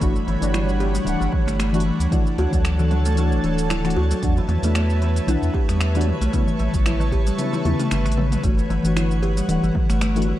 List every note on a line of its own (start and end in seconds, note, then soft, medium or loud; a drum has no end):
0.00 0.19 G1 loud
0.00 0.11 E3 medium
0.00 2.10 G3 medium
0.00 0.12 A3 medium
0.00 0.27 A3 medium
0.00 4.19 D4 medium
0.00 0.12 D4 medium
0.00 0.12 F#4 loud
0.00 8.43 C#5 medium
0.00 4.19 F#5 medium
0.00 2.09 B5 medium
0.00 kick loud
0.00 open hi-hat medium
0.00 shaker medium
0.16 shaker soft
0.27 0.36 G1 medium
0.27 0.36 E3 medium
0.27 open hi-hat soft
0.27 darbuka ka soft
0.27 darbuka tek soft
0.40 0.99 G1 medium
0.40 1.03 E3 medium
0.40 1.03 A3 medium
0.40 1.04 D4 medium
0.40 open hi-hat soft
0.40 shaker medium
0.44 1.05 F#4 medium
0.54 0.68 E4 medium
0.54 finger snap loud
0.54 mid tom medium
0.54 open hi-hat medium
0.54 shaker medium
0.69 shaker soft
0.80 0.94 G4 medium
0.80 open hi-hat soft
0.95 1.20 G3 medium
0.95 open hi-hat soft
0.95 shaker medium
1.05 1.15 D1 loud
1.05 1.69 E3 medium
1.05 1.70 A3 medium
1.05 1.71 D4 medium
1.05 1.71 F#5 medium
1.05 open hi-hat soft
1.05 darbuka dum medium
1.05 shaker medium
1.21 1.28 G1 loud
1.21 1.28 E3 medium
1.21 darbuka ka soft
1.21 shaker soft
1.33 kick loud
1.33 mid tom medium
1.33 darbuka ka medium
1.46 1.91 G1 medium
1.46 1.58 A3 medium
1.46 finger snap soft
1.46 open hi-hat soft
1.46 darbuka tek soft
1.46 shaker medium
1.60 1.85 A3 medium
1.60 finger snap medium
1.60 open hi-hat medium
1.60 shaker medium
1.73 1.82 E3 loud
1.73 1.82 A3 medium
1.73 1.82 D4 medium
1.73 1.83 F#4 loud
1.73 open hi-hat soft
1.73 shaker soft
1.80 open hi-hat medium
1.86 1.94 E3 medium
2.00 2.07 D2 medium
2.00 open hi-hat soft
2.00 shaker medium
2.11 2.22 E3 medium
2.11 2.22 A3 medium
2.11 2.23 D4 medium
2.11 2.26 E4 medium
2.11 2.23 F#4 loud
2.11 4.20 A4 medium
2.11 6.29 A5 medium
2.11 kick loud
2.11 mid tom medium
2.11 open hi-hat medium
2.11 shaker soft
2.27 shaker soft
2.38 2.47 D2 medium
2.38 2.52 F#4 loud
2.38 open hi-hat soft
2.38 darbuka ka medium
2.51 3.33 D2 medium
2.51 3.13 E3 medium
2.51 2.78 F#3 medium
2.51 3.14 A3 medium
2.51 3.15 D4 medium
2.51 kick loud
2.51 open hi-hat soft
2.51 shaker medium
2.55 3.16 F#4 medium
2.65 finger snap medium
2.65 open hi-hat medium
2.65 shaker medium
2.79 2.86 E3 medium
2.79 darbuka dum medium
2.79 shaker soft
2.91 mid tom medium
2.91 open hi-hat soft
2.91 darbuka ka soft
3.05 3.16 A3 medium
3.05 open hi-hat soft
3.05 shaker medium
3.15 3.80 E3 medium
3.15 3.81 A3 medium
3.15 3.43 A3 medium
3.15 3.81 D4 medium
3.15 open hi-hat medium
3.15 shaker soft
3.19 3.82 F#4 medium
3.32 3.39 A1 medium
3.32 shaker soft
3.44 3.95 D1 medium
3.44 3.52 E3 medium
3.44 open hi-hat soft
3.58 open hi-hat soft
3.58 shaker medium
3.70 3.84 E4 medium
3.70 finger snap loud
3.70 mid tom medium
3.70 open hi-hat medium
3.70 shaker medium
3.84 3.93 E3 medium
3.84 3.93 A3 medium
3.84 3.93 D4 medium
3.84 3.94 F#4 loud
3.84 finger snap soft
3.84 open hi-hat soft
3.84 shaker soft
3.90 open hi-hat medium
3.96 4.13 D2 loud
3.96 4.10 F#4 loud
4.11 4.23 F#3 medium
4.11 open hi-hat soft
4.11 shaker medium
4.22 4.40 E2 loud
4.22 4.33 E3 medium
4.22 4.33 A3 medium
4.22 4.33 D4 medium
4.22 4.33 F#4 medium
4.22 10.39 B4 medium
4.22 6.31 E5 medium
4.22 kick loud
4.22 open hi-hat medium
4.22 shaker medium
4.37 4.44 E3 medium
4.37 shaker soft
4.48 4.57 E2 medium
4.48 mid tom medium
4.48 open hi-hat soft
4.48 darbuka ka medium
4.48 darbuka tek soft
4.61 5.20 E2 medium
4.61 5.24 E3 medium
4.61 5.25 A3 medium
4.61 4.75 A3 medium
4.61 5.25 D4 medium
4.61 open hi-hat soft
4.61 shaker medium
4.66 5.26 F#4 medium
4.75 5.01 A3 medium
4.75 finger snap loud
4.75 open hi-hat medium
4.75 shaker medium
4.90 shaker soft
5.02 5.10 E3 medium
5.02 open hi-hat soft
5.16 open hi-hat soft
5.16 shaker medium
5.26 5.37 B1 medium
5.26 5.91 E3 medium
5.26 5.91 A3 medium
5.26 5.92 D4 medium
5.26 5.42 E4 medium
5.26 5.93 F#5 medium
5.26 mid tom medium
5.26 open hi-hat medium
5.26 darbuka dum medium
5.26 shaker medium
5.42 5.50 E2 loud
5.42 darbuka ka soft
5.42 shaker soft
5.54 5.68 G4 loud
5.54 kick loud
5.54 darbuka ka medium
5.68 6.12 E2 medium
5.68 5.94 G3 medium
5.68 finger snap soft
5.68 open hi-hat soft
5.68 darbuka tek soft
5.68 shaker medium
5.81 finger snap loud
5.81 open hi-hat medium
5.81 shaker medium
5.94 6.03 E3 loud
5.94 6.02 E3 medium
5.94 6.04 A3 medium
5.94 6.04 D4 medium
5.94 6.04 F#4 loud
5.94 open hi-hat soft
5.94 shaker soft
6.01 open hi-hat medium
6.07 mid tom medium
6.21 6.28 B1 loud
6.21 6.32 A3 medium
6.21 open hi-hat soft
6.21 shaker medium
6.33 6.43 C#3 loud
6.33 6.44 F#3 medium
6.33 6.58 A3 medium
6.33 6.44 B3 medium
6.33 6.44 E4 loud
6.33 8.41 E5 medium
6.33 8.41 A5 medium
6.33 8.42 C#6 medium
6.33 kick loud
6.33 open hi-hat medium
6.33 shaker medium
6.47 darbuka dum medium
6.47 shaker soft
6.59 6.69 A1 medium
6.59 6.68 E3 medium
6.59 open hi-hat soft
6.59 darbuka ka soft
6.59 darbuka tek soft
6.72 7.31 A1 medium
6.72 7.35 C#3 medium
6.72 7.35 F#3 medium
6.72 7.36 B3 medium
6.72 7.37 E4 medium
6.72 kick loud
6.72 open hi-hat soft
6.72 shaker medium
6.86 7.00 E4 medium
6.86 finger snap loud
6.86 mid tom medium
6.86 open hi-hat medium
6.86 shaker medium
7.00 darbuka tek medium
7.00 darbuka dum medium
7.00 shaker soft
7.12 7.26 G4 loud
7.12 kick medium
7.12 open hi-hat soft
7.12 darbuka ka soft
7.27 7.52 G3 medium
7.27 open hi-hat soft
7.27 shaker medium
7.38 7.62 C#3 medium
7.38 7.62 F#3 medium
7.38 7.63 B3 medium
7.38 7.63 E4 medium
7.38 open hi-hat medium
7.38 high tom medium
7.38 darbuka tek soft
7.38 shaker medium
7.53 7.60 E3 medium
7.53 high tom medium
7.53 shaker soft
7.64 7.74 E2 medium
7.64 7.76 C#3 medium
7.64 7.76 F#3 medium
7.64 7.76 B3 medium
7.64 7.77 E4 medium
7.64 mid tom medium
7.64 open hi-hat soft
7.64 high tom medium
7.79 8.14 C#3 medium
7.79 7.90 A3 medium
7.79 8.15 B3 medium
7.79 8.15 E4 medium
7.79 open hi-hat soft
7.79 mid tom medium
7.79 shaker medium
7.91 8.07 G1 medium
7.91 8.16 A3 medium
7.91 finger snap loud
7.91 open hi-hat medium
7.91 mid tom medium
7.91 shaker medium
8.05 8.36 A1 loud
8.05 finger snap soft
8.05 open hi-hat soft
8.05 shaker soft
8.12 open hi-hat medium
8.17 8.41 C#3 medium
8.17 8.26 E3 medium
8.17 8.41 F#3 medium
8.17 8.41 B3 medium
8.17 8.42 C#4 medium
8.17 mid tom loud
8.32 mid tom medium
8.32 open hi-hat soft
8.32 shaker medium
8.43 8.61 G1 loud
8.43 8.54 E3 medium
8.43 8.54 A3 medium
8.43 8.69 A3 medium
8.43 8.54 D4 medium
8.43 8.55 F#4 medium
8.43 10.39 C#5 medium
8.43 10.39 F#5 medium
8.43 kick loud
8.43 open hi-hat medium
8.43 shaker medium
8.58 shaker soft
8.69 8.79 G1 medium
8.69 8.78 E3 medium
8.69 open hi-hat soft
8.69 darbuka ka medium
8.69 darbuka tek soft
8.83 9.42 G1 medium
8.83 9.45 E3 medium
8.83 9.46 A3 medium
8.83 9.47 D4 medium
8.83 9.47 F#4 medium
8.83 open hi-hat soft
8.83 shaker medium
8.97 9.10 E4 medium
8.97 finger snap loud
8.97 mid tom medium
8.97 open hi-hat medium
8.97 shaker medium
9.11 shaker soft
9.23 9.36 G4 loud
9.23 open hi-hat soft
9.37 9.62 G3 medium
9.37 open hi-hat soft
9.37 shaker medium
9.47 9.58 D1 medium
9.47 10.12 E3 medium
9.47 10.12 A3 medium
9.47 10.13 D4 medium
9.47 10.14 F#5 medium
9.47 open hi-hat medium
9.47 darbuka dum medium
9.47 shaker medium
9.63 9.71 G1 loud
9.63 9.70 E3 medium
9.63 darbuka ka soft
9.63 shaker soft
9.75 kick loud
9.75 mid tom medium
9.75 darbuka ka medium
9.89 10.33 G1 medium
9.89 10.01 A3 medium
9.89 finger snap soft
9.89 open hi-hat soft
9.89 darbuka tek soft
9.89 shaker medium
10.01 10.27 A3 medium
10.01 finger snap loud
10.01 open hi-hat medium
10.01 shaker medium
10.16 10.24 E3 medium
10.16 10.25 A3 medium
10.16 10.25 D4 medium
10.16 10.25 F#4 loud
10.16 open hi-hat soft
10.16 shaker soft
10.22 open hi-hat medium
10.28 10.36 E3 medium